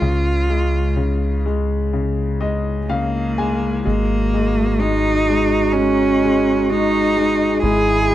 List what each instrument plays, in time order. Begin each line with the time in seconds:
Already playing: cello F4
0.02 fingered electric bass C#2, upright piano C#3
0.49 upright piano G#3
0.96 upright piano C#3
1.46 upright piano G#3
1.93 upright piano C#3
2.41 upright piano G#3 D#5
2.83 cello G#3
2.89 upright piano C#3 F5, cello A#3
3.38 upright piano G#3 G#5
3.84 fingered electric bass G#1, upright piano G#3, cello A#3, clarinet F#4, analog synth pad G#4 D#5 A#5 D#6
4.34 upright piano G#3
4.79 upright piano G#3, cello D#4
5.28 upright piano G#3
5.73 upright piano G#3, cello C#4
5.77 analog synth pad C#6
6.24 upright piano G#3
6.70 upright piano G#3, cello D#4
7.17 upright piano G#3
7.62 fingered electric bass G#1, upright piano G#3, clarinet E4, cello G#4, analog synth pad E5 B5 D#6
8.10 upright piano G#3